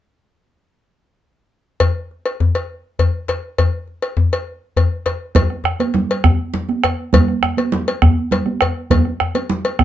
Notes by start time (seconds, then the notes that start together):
1.80 cowbell, djembe tone, djembe bass
2.11 djembe slap
2.26 cowbell
2.40 djembe slap, djembe tone, djembe bass
2.55 cowbell
2.99 cowbell, djembe tone, djembe bass
3.28 cowbell, djembe slap
3.58 cowbell, djembe tone, djembe bass
3.88 djembe slap
4.02 cowbell
4.17 djembe slap, djembe tone, djembe bass
4.32 cowbell, djembe slap
4.77 cowbell, djembe tone, djembe bass
5.06 cowbell, djembe slap
5.35 bombo low, cowbell, djembe slap, high conga, low conga, djembe bass
5.50 bombo rim, djembe slap, high conga
5.64 bombo rim, djembe tone
5.79 bombo rim, cowbell, djembe slap, high conga
5.94 bombo rim, djembe slap, low conga
6.09 cowbell, high conga
6.24 bombo rim, bombo low, djembe slap, high conga, djembe tone, djembe bass
6.40 djembe slap
6.54 djembe slap, low conga
6.69 bombo rim, high conga
6.84 bombo rim, cowbell, djembe slap, djembe tone
7.13 bombo low, cowbell, djembe slap, high conga, low conga, djembe bass
7.28 bombo rim, djembe slap
7.43 bombo rim, djembe tone
7.57 bombo rim, cowbell, high conga
7.72 bombo rim, djembe slap, low conga
7.87 cowbell, high conga
8.02 bombo rim, bombo low, djembe slap, high conga, djembe tone, djembe bass
8.18 djembe slap
8.31 cowbell, djembe slap, low conga
8.46 bombo rim, high conga
8.61 bombo rim, cowbell, djembe slap, djembe tone
8.90 bombo low, cowbell, djembe slap, high conga, low conga, djembe bass
9.05 bombo rim, djembe slap, high conga
9.20 bombo rim, djembe tone
9.35 bombo rim, cowbell, high conga
9.50 bombo rim, djembe slap, low conga
9.64 cowbell, high conga
9.79 bombo rim, bombo low, djembe slap, high conga, djembe tone, djembe bass